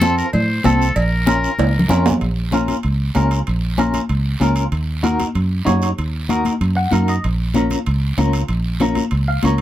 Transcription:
Already playing: fingered electric bass F2, muted trumpet A4
0.02 clean electric guitar C4 F4 A4, cowbell, high conga, short guiro
0.17 muted trumpet A#4, short guiro
0.33 fingered electric bass A2, muted trumpet C5, cowbell, high conga, low conga, long guiro
0.64 fingered electric bass C2, clean electric guitar C4 F4 A4, muted trumpet A4, cowbell, high conga, short guiro
0.82 short guiro
0.95 fingered electric bass A#1, muted trumpet A#4, cowbell, high conga, long guiro
1.27 clean electric guitar C#4 F4 A#4, cowbell, high conga, short guiro
1.44 short guiro
1.59 fingered electric bass C#2, cowbell, high conga, high timbale, long guiro
1.79 low conga
1.89 fingered electric bass F2, clean electric guitar C#4 F4 A#4, cowbell, low conga, low timbale, short guiro
2.06 low timbale, short guiro
2.10 low conga
2.21 fingered electric bass A#1, high timbale, long guiro
2.52 clean electric guitar C#4 F4 A#4, high conga, high timbale, short guiro
2.68 high conga, high timbale, short guiro
2.83 fingered electric bass C#2, high timbale, long guiro
3.15 fingered electric bass C#2, clean electric guitar C#4 F4 A#4, high conga, high timbale, low timbale, short guiro
3.31 high timbale, short guiro
3.47 fingered electric bass A#1, high timbale, long guiro
3.78 clean electric guitar C#4 F4 A#4, high conga, high timbale, short guiro
3.94 high conga, high timbale, short guiro
4.09 fingered electric bass C#2, high timbale, long guiro
4.41 fingered electric bass C#2, clean electric guitar C#4 F4 A#4, high conga, high timbale, short guiro
4.56 high timbale, short guiro
4.72 fingered electric bass D#2, high timbale, long guiro
5.03 clean electric guitar D#4 F#4 A#4, high conga, high timbale, short guiro
5.19 high conga, high timbale, short guiro
5.35 fingered electric bass F#2, high timbale, long guiro
5.65 fingered electric bass F#2, clean electric guitar D#4 F#4 C#5, high conga, high timbale, low timbale, short guiro
5.82 high timbale, short guiro
5.98 fingered electric bass D#2, high timbale, long guiro
6.29 clean electric guitar D#4 F#4 A#4, high conga, high timbale, short guiro
6.45 high conga, high timbale, short guiro
6.61 fingered electric bass F#2, high timbale, long guiro
6.77 clean electric guitar F#5
6.91 fingered electric bass F#2, clean electric guitar D#4 F#4 A#4 F5, high conga, high timbale, short guiro
7.08 clean electric guitar D#5, high timbale, short guiro
7.24 fingered electric bass A#1, high timbale, long guiro
7.54 clean electric guitar C#4 F4 A#4, high conga, high timbale, short guiro
7.71 high conga, high timbale, short guiro
7.86 fingered electric bass C#2, high timbale, long guiro
8.18 fingered electric bass C#2, clean electric guitar C#4 F4 A#4, high conga, high timbale, short guiro
8.33 high timbale, short guiro
8.48 fingered electric bass A#1, high timbale, long guiro
8.80 clean electric guitar C#4 F4 A#4, high conga, high timbale, short guiro
8.95 high conga, high timbale, short guiro
9.11 fingered electric bass C#2, high timbale, long guiro
9.28 clean electric guitar F5
9.43 fingered electric bass C#2, clean electric guitar C#4 F4 A#4 C#5, high conga, high timbale, short guiro
9.58 high timbale

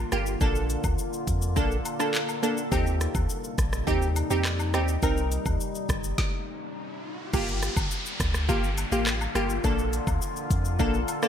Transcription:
Already playing: ambient pad D3 G3 A#3 F4
0.12 sub bass G1, synth stab A#3 F4 G4, cross-stick, closed hi-hat, cabasa, shaker
0.26 shaker
0.41 sub bass A#1, synth stab A#3 D4 A4, ambient pad A4, kick, high woodblock, shaker
0.55 shaker
0.70 closed hi-hat, cabasa, shaker
0.84 sub bass D2, kick, high woodblock, shaker
0.98 shaker
1.13 shaker
1.27 sub bass F2, kick, closed hi-hat, cabasa, shaker
1.42 shaker
1.56 sub bass A#1, synth stab A#3 D4 A4, kick, shaker
1.72 shaker
1.85 closed hi-hat, cabasa, high woodblock, shaker
1.99 synth stab A#3 D4 A4, cross-stick, shaker
2.14 clap, shaker
2.29 high woodblock, shaker
2.43 synth stab A#3 D4 A4, closed hi-hat, cabasa, shaker
2.58 shaker
2.72 sub bass D#2, ambient pad C3 G3 D#4, synth stab C4 D#4 G4, kick, high woodblock, shaker
2.87 shaker
3.01 cross-stick, closed hi-hat, cabasa, shaker
3.15 sub bass D#2, kick, high woodblock, shaker
3.29 shaker
3.44 shaker
3.58 sub bass A#1, kick, cross-stick, closed hi-hat, cabasa, shaker
3.73 cross-stick, shaker
3.87 sub bass D#2, synth stab C4 D#4 G4, kick, shaker
4.02 shaker
4.16 closed hi-hat, cabasa, high woodblock, shaker
4.30 sub bass F2, synth stab C4 D#4 G4, shaker
4.45 cross-stick, clap, shaker
4.59 high woodblock, shaker
4.74 sub bass D#2, synth stab C4 D#4 G4, cross-stick, closed hi-hat, cabasa, shaker
4.88 shaker
5.03 sub bass C2, synth stab C4 D#4 A#4, kick, riser, high woodblock, shaker
5.17 shaker
5.31 closed hi-hat, cabasa, shaker
5.46 sub bass D#2, kick, high woodblock, shaker
5.60 shaker
5.75 shaker
5.89 sub bass G1, kick, cross-stick, closed hi-hat, cabasa, shaker
6.04 shaker
6.18 kick, snare
7.33 sub bass G1, ambient pad D3 G3 A#3 F4, synth stab A#3 F4 G4, kick, crash, downlifter, high woodblock, shaker
7.48 shaker
7.62 cross-stick, closed hi-hat, cabasa, shaker
7.77 sub bass G1, kick, high woodblock, shaker
7.91 shaker
8.06 shaker
8.20 sub bass D2, kick, cross-stick, closed hi-hat, cabasa, shaker
8.34 cross-stick, shaker
8.49 sub bass G1, synth stab A#3 F4 G4, kick, high woodblock, shaker
8.64 shaker
8.78 closed hi-hat, cabasa, high woodblock, shaker
8.92 sub bass A1, synth stab A#3 F4 G4, shaker
9.07 cross-stick, clap, shaker
9.21 high woodblock, shaker
9.35 sub bass G1, synth stab A#3 F4 G4, cross-stick, closed hi-hat, cabasa, shaker
9.50 shaker
9.64 sub bass A#1, synth stab A#3 D4 A4, ambient pad A4, kick, high woodblock, shaker
9.79 shaker
9.93 closed hi-hat, cabasa, shaker
10.07 sub bass D2, kick, high woodblock, shaker
10.22 shaker
10.37 shaker
10.50 sub bass F2, kick, closed hi-hat, cabasa, shaker
10.65 shaker
10.79 sub bass A#1, synth stab A#3 D4 A4, kick, high woodblock, shaker
10.94 shaker
11.08 closed hi-hat, cabasa, high woodblock, shaker
11.22 synth stab A#3 D4 A4, cross-stick, shaker

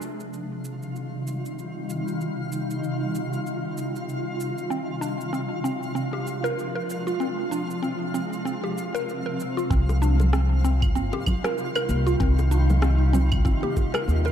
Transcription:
Already playing: ambient pad C3 D#3 G3 D#4, synth texture F4 F5
0.02 cabasa
0.20 cabasa
0.33 cabasa
0.65 cabasa
0.82 cabasa
0.96 cabasa
1.27 cabasa
1.46 cabasa
1.59 cabasa
1.90 cabasa
2.08 cabasa
2.21 cabasa
2.52 cabasa
2.71 cabasa
2.84 cabasa
3.15 cabasa
3.33 cabasa
3.47 cabasa
3.78 cabasa
3.96 cabasa
4.09 cabasa
4.40 cabasa
4.58 cabasa
4.70 ambient pad F3 G#3 D4, synth pluck C4, cabasa
5.01 synth pluck D4, cabasa
5.21 cabasa
5.33 synth pluck C4, cabasa
5.64 synth pluck C4, cabasa
5.83 cabasa
5.95 synth pluck C4, cabasa
6.13 synth pluck G4
6.27 cabasa
6.44 synth pluck A#4, cabasa
6.59 cabasa
6.75 synth pluck A#4
6.90 cabasa
7.07 synth pluck F4, cabasa
7.20 synth pluck C4, ambient pad C4, cabasa
7.51 synth pluck D4, cabasa
7.71 cabasa
7.83 synth pluck C4, cabasa
8.14 synth pluck C4, cabasa
8.33 cabasa
8.45 synth pluck C4, cabasa
8.64 synth pluck G4
8.78 cabasa
8.95 synth pluck A#4, cabasa
9.09 cabasa
9.26 synth pluck A#4
9.40 cabasa
9.57 synth pluck F4, cabasa
9.70 upright bass C2, ambient pad C3 D#3 G3 D#4, synth pluck C4, synth texture F4 F5, kick, cabasa
9.89 high bongo, cabasa
10.02 synth pluck D4, cabasa
10.20 high bongo, low conga, cabasa
10.33 synth pluck C4, cross-stick, cabasa
10.64 synth pluck C4, cabasa
10.82 kick, cabasa, claves
10.95 upright bass G1, synth pluck C4, high conga, cabasa
11.13 synth pluck G4, high bongo
11.26 kick, low conga, cabasa, claves
11.44 synth pluck A#4, cross-stick, high bongo, cabasa
11.58 cabasa
11.75 synth pluck A#4, high bongo, cabasa, claves
11.89 upright bass C2, high conga, cabasa
12.07 synth pluck F4, cabasa
12.20 upright bass C2, synth pluck C4, kick, cabasa
12.38 high bongo, cabasa
12.51 synth pluck D4, cabasa
12.70 high bongo, high conga, low conga, cabasa
12.82 synth pluck C4, cross-stick, cabasa
13.13 synth pluck C4, low conga, cabasa
13.32 kick, cabasa, claves
13.45 synth pluck C4, kick, cabasa
13.63 synth pluck G4, high conga
13.77 kick, high bongo, cabasa
13.94 synth pluck A#4, cross-stick, cabasa, claves
14.08 upright bass D#2, high conga, cabasa
14.25 synth pluck A#4, high bongo, cabasa

